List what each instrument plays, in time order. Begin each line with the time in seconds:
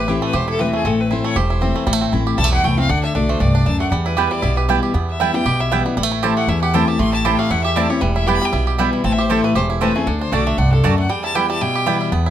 Already playing: upright bass A1, steel-string acoustic guitar A2, five-string banjo C4 G4
0.00 fiddle B4
0.08 steel-string acoustic guitar E3 A3 C4 E4, five-string banjo E4, fiddle G4
0.22 five-string banjo A3, fiddle B4
0.33 upright bass E1, steel-string acoustic guitar E2, five-string banjo G4, fiddle C5
0.48 five-string banjo E4, fiddle A4
0.59 steel-string acoustic guitar E3 A3 C4 E4, five-string banjo C4, fiddle B4
0.73 five-string banjo A3, fiddle G#4
0.85 upright bass A1, steel-string acoustic guitar A2, five-string banjo C4, fiddle A4
1.00 fiddle B4
1.11 steel-string acoustic guitar E3 A3 C4 E4, five-string banjo E4, fiddle C5
1.24 five-string banjo A3, fiddle C#5
1.36 upright bass E1, steel-string acoustic guitar E2, five-string banjo G4, fiddle C5
1.50 five-string banjo E4
1.61 steel-string acoustic guitar E3 A3 C4 E4, five-string banjo C4
1.76 five-string banjo A3
1.87 upright bass A1, steel-string acoustic guitar A2, five-string banjo G3
1.93 five-string banjo A3
2.01 five-string banjo C4
2.12 upright bass A1, steel-string acoustic guitar E3 A3 C4 E4, five-string banjo E4
2.27 five-string banjo G4
2.38 upright bass B1, steel-string acoustic guitar E2, five-string banjo G3, fiddle A5
2.44 five-string banjo A3
2.53 five-string banjo E4, fiddle F#5
2.63 upright bass C2, steel-string acoustic guitar E3 A3 C4 E4, five-string banjo A3, fiddle G5
2.77 five-string banjo C4, steel-string acoustic guitar C4 E4, fiddle F5
2.89 upright bass D2, steel-string acoustic guitar D3, five-string banjo D4, fiddle F#5
3.04 five-string banjo D4, fiddle E5
3.14 upright bass B1, steel-string acoustic guitar D3 A3 D4 F#4, five-string banjo D4, fiddle D5
3.29 five-string banjo A3, fiddle C5
3.40 upright bass C2, steel-string acoustic guitar G2, five-string banjo D4, fiddle D5
3.55 five-string banjo D4
3.66 upright bass D2, steel-string acoustic guitar F#2, five-string banjo D4, fiddle A5
3.80 five-string banjo A3, fiddle F#5
3.91 upright bass E2, steel-string acoustic guitar E2, five-string banjo G3
4.06 five-string banjo E4, fiddle B4
4.17 steel-string acoustic guitar E3 G3 B3 E4, mandolin B3 E4 B4 G5, five-string banjo G4
4.31 five-string banjo G3, fiddle D5
4.42 upright bass B1, steel-string acoustic guitar B2, five-string banjo E4
4.57 five-string banjo G4, fiddle B4
4.68 steel-string acoustic guitar E3 G3 B3 E4, mandolin B3 E4 B4 G5, five-string banjo E4
4.83 five-string banjo G4
4.94 upright bass E2, steel-string acoustic guitar E2, five-string banjo B3
5.09 fiddle E5
5.20 steel-string acoustic guitar E3 G3 B3 E4, mandolin B3 E4 B4 G5, five-string banjo E4
5.34 five-string banjo G3, steel-string acoustic guitar B3 E4, fiddle G5
5.45 upright bass B1, steel-string acoustic guitar B2, five-string banjo G4
5.60 five-string banjo E4, fiddle E5
5.71 steel-string acoustic guitar E3 G3 B3 E4, mandolin B3 E4 B4 G5, five-string banjo B3
5.86 five-string banjo G3, steel-string acoustic guitar B3 E4
5.97 upright bass A1, steel-string acoustic guitar A2, five-string banjo G3
6.03 five-string banjo A3
6.12 five-string banjo E4
6.23 steel-string acoustic guitar E3 A3 C4 E4, mandolin C4 E4 C5 A5, five-string banjo G4
6.37 five-string banjo A3, fiddle F#5
6.47 upright bass E2, steel-string acoustic guitar E2, five-string banjo E4, fiddle E5
6.62 five-string banjo G4, fiddle F#5
6.74 steel-string acoustic guitar E3 A3 C4 E4, mandolin C4 E4 C5 A5, five-string banjo E4, fiddle G5
6.88 five-string banjo G4, fiddle A5
6.99 upright bass A1, steel-string acoustic guitar A2, five-string banjo A3, fiddle C6
7.13 five-string banjo E4, fiddle A5
7.25 steel-string acoustic guitar E3 A3 C4 E4, mandolin C4 E4 C5 A5, five-string banjo G4, fiddle G5
7.39 five-string banjo A3, fiddle F5
7.50 upright bass E2, steel-string acoustic guitar E2, five-string banjo E4, fiddle F#5
7.64 five-string banjo G4, fiddle E5
7.75 steel-string acoustic guitar E3 A3 C4 E4, mandolin C4 E4 C5 A5, five-string banjo E4, fiddle D5
7.90 steel-string acoustic guitar C4 E4, five-string banjo G4, fiddle C#5
8.01 upright bass E1, steel-string acoustic guitar E2, five-string banjo G3, fiddle B4
8.16 five-string banjo E4, fiddle E5
8.26 steel-string acoustic guitar E3 G3 B3 E4, mandolin B3 E4 B4 G5, five-string banjo G4, fiddle G5
8.35 fiddle B5
8.42 five-string banjo G3, fiddle G5
8.53 upright bass B1, steel-string acoustic guitar B2, five-string banjo E4
8.67 five-string banjo G4
8.78 steel-string acoustic guitar E3 G3 B3 E4, five-string banjo G3, mandolin B3 E4 B4 G5
8.93 five-string banjo E4
9.04 upright bass A1, steel-string acoustic guitar A2, five-string banjo C4, fiddle A5
9.12 fiddle E5
9.18 five-string banjo G4, fiddle C5
9.29 steel-string acoustic guitar E3 A3 C4 E4, mandolin C4 E4 C5 A5, five-string banjo E4, fiddle A4
9.44 five-string banjo A3, fiddle B4
9.55 upright bass E1, steel-string acoustic guitar E2, five-string banjo G4, fiddle C5
9.70 five-string banjo E4
9.81 steel-string acoustic guitar E3 A3 C4 E4, mandolin C4 E4 C5 A5, five-string banjo C4, fiddle B4
9.95 five-string banjo A3, steel-string acoustic guitar C4 E4, fiddle G#4
10.07 upright bass D2, steel-string acoustic guitar D3, five-string banjo D4, fiddle A4
10.20 five-string banjo D4, fiddle C5
10.31 upright bass B1, steel-string acoustic guitar D3 A3 D4 F#4, mandolin A3 F#4 D5 A5, five-string banjo D4, fiddle D5
10.46 five-string banjo A3, fiddle E5
10.58 upright bass C2, steel-string acoustic guitar G2, five-string banjo D4, fiddle F#5
10.72 five-string banjo D4, fiddle A4
10.83 upright bass D2, steel-string acoustic guitar F#2, mandolin A3 F#4 D5 A5, five-string banjo D4, fiddle D5
10.98 five-string banjo A3, fiddle F#5
11.09 steel-string acoustic guitar E2, five-string banjo G3, fiddle G5
11.24 five-string banjo E4, fiddle A5
11.35 steel-string acoustic guitar E3 G3 B3 E4, mandolin B3 E4 B4 G5, five-string banjo G4, fiddle G5
11.50 five-string banjo G3, fiddle A5
11.61 steel-string acoustic guitar B2, five-string banjo E4, fiddle G5
11.75 five-string banjo G4
11.86 steel-string acoustic guitar E3 G3 B3 E4, five-string banjo G3, mandolin B3 E4 B4 G5
12.01 five-string banjo E4
12.12 upright bass E2, steel-string acoustic guitar E2, five-string banjo B3
12.26 five-string banjo E4